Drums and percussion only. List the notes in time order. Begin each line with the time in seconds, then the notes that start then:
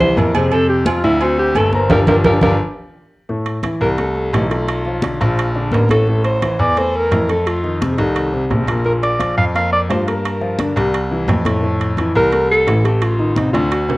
0.00 high conga, low conga
0.17 high conga, low agogo
0.35 high conga, low agogo
0.52 high conga, low agogo
0.69 high conga
0.86 high conga, low agogo
1.03 high conga
1.20 high conga, low agogo
1.38 high conga
1.55 high conga, low agogo
1.72 high conga
1.90 low conga, high timbale
2.07 low conga, high timbale
2.24 low conga, high timbale
2.41 low conga, high timbale
3.29 high conga
3.46 high conga, high timbale
3.63 high conga, high timbale, low timbale
3.81 high conga
3.98 high conga, high timbale
4.16 high conga
4.33 high conga, high timbale, low timbale
4.50 high conga, high timbale
4.67 high conga, high timbale
4.85 high conga
5.02 high conga, high timbale, low timbale
5.21 high timbale
5.38 high conga, high timbale
5.55 high conga
5.72 high conga, high timbale, low timbale
5.89 high conga, high timbale
6.07 high conga
6.25 high conga, high timbale
6.42 high conga, high timbale, low timbale
6.60 high conga
6.77 high conga, high timbale
6.94 high conga
7.11 high conga, high timbale, low timbale
7.29 high conga, high timbale
7.46 high conga, high timbale
7.64 high conga
7.82 high conga, high timbale, low timbale
7.98 high timbale
8.16 high conga, high timbale
8.34 high conga
8.50 high conga, high timbale, low timbale
8.67 high conga, high timbale
8.85 high conga
9.02 high conga, high timbale
9.20 high conga, high timbale, low timbale
9.37 high conga
9.55 high conga, high timbale
9.72 high conga
9.90 high conga, high timbale, low timbale
10.08 high conga, high timbale
10.25 high conga, high timbale
10.42 high conga
10.59 high conga, high timbale, low timbale
10.77 high timbale
10.94 high conga, high timbale
11.10 high conga
11.28 high conga, high timbale, low timbale
11.45 high conga, high timbale
11.63 high conga
11.80 high conga, high timbale
11.97 high conga, high timbale, low timbale
12.15 high conga
12.32 high conga, high timbale
12.50 high conga
12.67 high conga, high timbale, low timbale
12.84 high conga, high timbale
13.01 high conga, high timbale
13.19 high conga
13.36 high conga, high timbale, low timbale
13.55 high timbale
13.71 high conga, high timbale
13.88 high conga, high timbale